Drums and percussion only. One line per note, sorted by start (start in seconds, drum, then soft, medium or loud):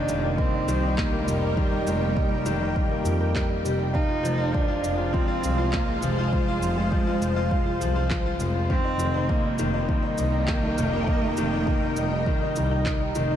0.09 shaker medium
0.38 kick loud
0.68 shaker medium
0.98 kick loud
0.98 clap medium
1.28 shaker medium
1.57 kick loud
1.87 shaker medium
2.17 kick loud
2.46 shaker medium
2.76 kick loud
3.05 shaker medium
3.35 kick loud
3.35 clap medium
3.65 shaker medium
3.95 kick loud
4.25 shaker medium
4.54 kick loud
4.84 shaker medium
5.14 kick loud
5.44 shaker medium
5.73 kick loud
5.73 clap medium
6.03 shaker medium
6.33 kick loud
6.63 shaker medium
6.92 kick loud
7.22 shaker medium
7.51 kick loud
7.81 shaker medium
8.10 kick loud
8.10 clap medium
8.40 shaker medium
8.70 kick loud
8.99 shaker medium
9.29 kick loud
9.59 shaker medium
9.89 kick medium
10.18 shaker medium
10.48 kick loud
10.48 clap medium
10.78 shaker medium
11.08 kick loud
11.37 shaker medium
11.67 kick loud
11.97 shaker medium
12.26 kick medium
12.56 shaker medium
12.86 kick loud
12.86 clap medium
13.15 shaker medium